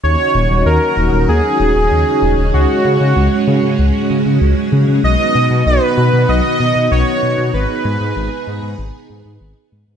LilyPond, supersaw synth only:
\new Staff \with { instrumentName = "Supersaw synth" } { \time 4/4 \key dis \phrygian \tempo 4 = 96 cis''4 ais'4 gis'2 | fis'2 r2 | dis''4 b'4 dis''4 cis''4 | b'2. r4 | }